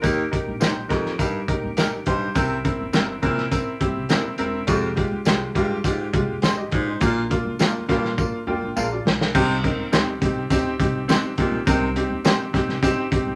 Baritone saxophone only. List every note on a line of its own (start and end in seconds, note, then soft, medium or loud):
0.02 0.26 D#2 medium
0.90 1.13 F2 medium
1.18 1.42 G2 medium
2.06 2.30 G2 medium
2.35 2.59 C3 medium
3.22 3.46 A#2 medium
4.67 4.91 F2 medium
5.55 5.79 G2 medium
5.84 6.08 G#2 medium
6.72 6.96 G#2 medium
7.01 7.24 A#2 medium
7.89 8.12 G2 medium
9.35 9.58 C3 medium
11.38 11.61 A#2 medium
11.66 11.90 C3 medium